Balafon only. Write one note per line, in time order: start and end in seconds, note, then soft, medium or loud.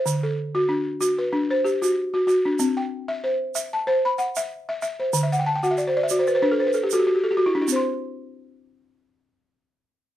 0.00 0.23 C5 medium
0.06 0.37 D3 medium
0.23 0.69 A4 medium
0.55 0.87 F#4 medium
0.69 1.18 D4 medium
1.01 1.32 F#4 medium
1.18 1.64 B4 medium
1.33 1.64 D4 medium
1.50 1.96 C5 medium
1.64 2.14 G4 medium
1.82 2.12 F#4 medium
2.14 2.26 F#4 medium
2.27 2.59 F#4 medium
2.45 2.77 D4 medium
2.59 2.91 C4 medium
2.77 3.23 G5 medium
3.08 3.41 E5 medium
3.24 3.73 C5 medium
3.55 3.87 E5 medium
3.73 4.19 A5 medium
3.87 4.19 C5 medium
4.05 4.51 B5 medium
4.18 4.68 F#5 medium
4.37 4.68 E5 medium
4.69 4.81 E5 medium
4.82 5.14 E5 medium
5.00 5.32 C5 medium
5.13 5.46 D3 medium
5.23 5.38 E5 medium
5.32 5.45 F#5 medium
5.39 5.54 G5 medium
5.46 5.63 A5 medium
5.55 5.70 G5 medium
5.63 5.95 F#4 medium
5.63 5.76 F#5 medium
5.71 5.86 E5 medium
5.78 5.94 D5 medium
5.87 6.02 C5 medium
5.97 6.09 D5 medium
6.03 6.18 E5 medium
6.11 6.42 F#4 medium
6.11 6.27 D5 medium
6.19 6.34 C5 medium
6.28 6.41 B4 medium
6.35 6.49 C5 medium
6.42 6.74 D4 medium
6.42 6.58 B4 medium
6.51 6.66 A4 medium
6.60 6.73 C5 medium
6.67 6.81 B4 medium
6.74 6.90 A4 medium
6.83 6.98 G4 medium
6.93 7.05 F#4 medium
6.93 7.05 A4 medium
6.99 7.13 G4 medium
7.07 7.22 F#4 medium
7.15 7.29 G4 medium
7.24 7.36 A4 medium
7.31 7.45 G4 medium
7.37 7.54 F#4 medium
7.46 7.60 E4 medium
7.55 7.68 D4 medium
7.61 7.76 E4 medium
7.68 10.17 C4 medium
7.72 10.17 C5 medium
7.72 10.17 C6 medium